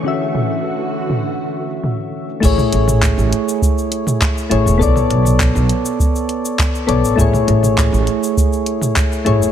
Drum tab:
CC |----------------|x---------------|----------------|----------------|
HH |----------------|--x---x---x---x-|--x---x---x---x-|--x---x---x---x-|
SH |---xx--xxx-xxx-x|xx-xxx-xxx-xxx-x|xx-xxx-xxx-xxx-x|xx-xxx-xxx-xxx-x|
CP |----------------|----x-------x---|----x-------x---|----x-------x---|
T2 |--o----o----o---|-o-o-------o----|-o-o------------|-o-o-------o----|
BD |----------------|o---o---o---o---|o---o---o---o---|o---o---o---o---|